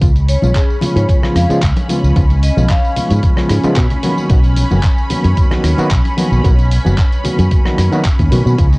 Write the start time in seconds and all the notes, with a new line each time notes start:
0.01 C#2 C#3 F3 G#3 B3 C#4 F4 B5, kick, closed hi-hat, tambourine
0.16 closed hi-hat, tambourine
0.29 C#5, open hi-hat, tambourine
0.42 B1 C#3 F3 G#3 B3 F4 C#5, tambourine, muted conga, high conga
0.55 G#4, kick, clap, closed hi-hat, tambourine
0.70 tambourine
0.81 C#3 F3 G#3 B3 F4, open hi-hat, tambourine, muted conga, low conga
0.96 G#2 C#5, closed hi-hat, tambourine
1.09 kick, closed hi-hat, tambourine
1.23 C#3 F3 G#3 B3 F4, cross-stick, tambourine, high conga
1.35 F2 F5, cross-stick, open hi-hat, tambourine, muted conga
1.49 C#3 F3 G#3 B3 F4, muted fingered electric bass stroke, closed hi-hat, tambourine
1.62 C#2, kick, clap, closed hi-hat, tambourine
1.76 closed hi-hat, tambourine, muted conga
1.89 C#3 F3 G#3 B3 F4, open hi-hat, tambourine, high conga
2.03 C#2, tambourine
2.15 C#2 C#3 F3 G#3 B3 F4, kick, closed hi-hat, tambourine
2.30 closed hi-hat, tambourine, muted conga
2.43 D#5, open hi-hat, tambourine
2.57 B1 C#3 F3 G#3 B3 F4, tambourine, high conga
2.69 F5, kick, clap, closed hi-hat, tambourine, muted conga
2.85 tambourine
2.96 C#3 F3 G#3 B3 F4, open hi-hat, tambourine, low conga
3.10 G#2, closed hi-hat, tambourine
3.23 kick, closed hi-hat, tambourine, muted conga
3.37 C#3 F3 G#3 B3 F4, cross-stick, tambourine, high conga
3.50 G#2, cross-stick, open hi-hat, tambourine
3.63 C#3 F3 G#3 B3 F4, muted fingered electric bass stroke, closed hi-hat, tambourine, muted conga
3.76 B2, kick, clap, closed hi-hat, tambourine
3.90 closed hi-hat, tambourine, low conga
4.03 D#3 F#3 A#3 B3 F#4, open hi-hat, tambourine, high conga, low conga
4.18 tambourine, muted conga
4.30 B1 D#3 F#3 A#3 B3 F#4, kick, closed hi-hat, tambourine
4.44 closed hi-hat, tambourine
4.57 open hi-hat, tambourine, muted conga
4.71 F#1 D#3 F#3 A#3 B3 F#4, tambourine, high conga
4.83 kick, clap, closed hi-hat, tambourine
4.98 tambourine
5.10 D#3 F#3 A#3 B3 F#4, open hi-hat, tambourine, muted conga, low conga
5.24 F#2, closed hi-hat, tambourine
5.37 kick, closed hi-hat, tambourine
5.51 D#3 F#3 A#3 B3 F#4, cross-stick, tambourine, muted conga, high conga
5.64 D#2, cross-stick, open hi-hat, tambourine
5.78 D#3 F#3 A#3 B3 F#4, muted fingered electric bass stroke, closed hi-hat, tambourine
5.91 B1, kick, clap, closed hi-hat, tambourine
6.05 closed hi-hat, tambourine, muted conga
6.17 D#3 F#3 A#3 B3 F#4, open hi-hat, tambourine, high conga
6.32 B1, tambourine
6.44 B1 D#3 F#3 A#3 B3 F#4, kick, closed hi-hat, tambourine, muted conga
6.59 closed hi-hat, tambourine
6.71 open hi-hat, tambourine
6.85 F#1 D#3 F#3 A#3 B3 F#4, tambourine, high conga
6.98 kick, clap, closed hi-hat, tambourine, muted conga
7.12 closed hi-hat, tambourine
7.24 D#3 F#3 A#3 B3 F#4, open hi-hat, tambourine, low conga
7.39 F#2, closed hi-hat, tambourine, muted conga
7.51 kick, closed hi-hat, tambourine
7.65 D#3 F#3 A#3 B3 F#4, cross-stick, tambourine, high conga
7.78 F#2, cross-stick, open hi-hat, tambourine
7.92 D#3 F#3 A#3 B3 F#4, closed hi-hat, tambourine, muted conga
8.05 kick, clap, closed hi-hat, tambourine
8.19 D#2, kick, closed hi-hat, tambourine, low conga
8.31 B2 D#3 F#3 A#3 B3 F#4, open hi-hat, tambourine, muted conga, high conga, low conga
8.46 B2, tambourine
8.58 C#2 C#3 F3 G#3 B3 D#4 F4 D#5, kick, closed hi-hat, tambourine
8.73 closed hi-hat, tambourine